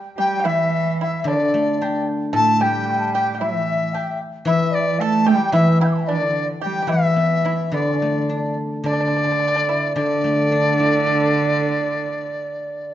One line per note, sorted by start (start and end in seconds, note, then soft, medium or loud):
0.17 0.45 G3 medium
0.17 0.37 G4 medium
0.17 0.46 G5 medium
0.17 0.48 G5 loud
0.39 0.46 G4 medium
0.44 1.28 E3 medium
0.44 0.96 E4 medium
0.44 1.00 E5 medium
0.44 1.00 E5 loud
1.01 1.26 E4 medium
1.01 1.19 E5 medium
1.01 1.06 G5 medium
1.05 1.28 E5 medium
1.19 1.29 E5 medium
1.24 2.87 D3 medium
1.24 2.08 D3 medium
1.24 1.78 D4 medium
1.24 1.80 D5 medium
1.24 2.08 D5 medium
1.54 2.62 A3 soft
1.81 2.89 D4 soft
1.81 2.07 G4 medium
1.81 2.06 G5 medium
1.81 1.85 A5 medium
2.33 3.93 A2 medium
2.33 2.63 A3 medium
2.33 2.59 A4 medium
2.33 2.62 A5 medium
2.33 2.64 A5 loud
2.61 3.43 G3 medium
2.61 2.95 G4 medium
2.61 2.99 G5 medium
2.61 3.13 G5 loud
2.95 3.11 E4 medium
2.99 3.15 A5 medium
3.13 3.33 G4 medium
3.13 3.33 G5 loud
3.13 3.41 G5 medium
3.33 3.42 G4 medium
3.33 3.40 G5 medium
3.38 4.21 E3 medium
3.38 3.91 E4 medium
3.38 4.19 E5 medium
3.38 3.95 E5 medium
3.94 4.19 G4 medium
3.94 4.21 G5 medium
3.94 3.98 A5 medium
4.45 5.51 E3 medium
4.45 5.00 E3 medium
4.45 4.97 E4 medium
4.45 4.76 E5 loud
4.45 4.73 E5 medium
4.71 4.81 D5 medium
4.71 5.02 D5 medium
4.80 4.89 E5 medium
4.88 5.01 D5 medium
4.99 5.28 A3 medium
4.99 5.26 A4 loud
4.99 5.28 A5 medium
4.99 5.29 A5 loud
5.26 5.55 G3 medium
5.26 5.52 G4 medium
5.26 5.56 G5 medium
5.26 5.53 G5 medium
5.52 6.86 E3 medium
5.52 6.11 E3 loud
5.52 5.79 E4 medium
5.52 5.79 E5 loud
5.52 5.79 E5 medium
5.80 6.06 E4 medium
5.80 5.83 E5 medium
5.80 5.86 G5 medium
5.80 5.87 G6 soft
5.85 6.09 E5 medium
5.85 5.91 E6 soft
5.91 5.97 B5 soft
5.91 5.94 D6 soft
5.98 6.03 G5 medium
5.98 6.01 A5 medium
6.03 6.09 E5 medium
6.08 6.49 D3 medium
6.08 6.46 D4 medium
6.08 6.48 D5 medium
6.61 6.94 G3 medium
6.61 6.81 G4 medium
6.61 6.87 G5 medium
6.61 6.90 G5 medium
6.82 6.89 G4 medium
6.87 8.57 E3 medium
6.87 7.40 E4 medium
6.87 7.65 E5 medium
6.87 7.75 E5 medium
6.92 7.76 E3 medium
7.16 8.29 B3 soft
7.45 8.58 E4 soft
7.45 7.71 E4 medium
7.65 7.71 E5 soft
7.71 8.82 D3 medium
7.71 8.00 B3 medium
7.71 8.58 D5 medium
7.71 8.57 D5 medium
7.71 7.75 E5 medium
7.75 8.59 D3 medium
8.00 9.14 A3 soft
8.00 8.55 D4 medium
8.29 9.41 D4 soft
8.84 9.94 D3 medium
8.84 9.93 D3 medium
8.84 8.92 D4 medium
8.84 9.93 D5 loud
8.93 8.99 D4 soft
9.00 9.07 D4 medium
9.08 9.15 D4 soft
9.16 9.23 D4 soft
9.24 9.30 D4 soft
9.32 9.38 D4 soft
9.39 9.46 D4 soft
9.48 9.54 D4 medium
9.56 9.62 D4 medium
9.69 9.95 E4 medium
9.95 11.61 D3 medium
9.95 12.94 D3 loud
9.95 12.94 D4 medium
9.95 12.93 D5 loud
10.24 11.34 A3 soft
10.52 11.61 D4 soft
10.79 11.89 E4 soft
11.06 12.16 A4 soft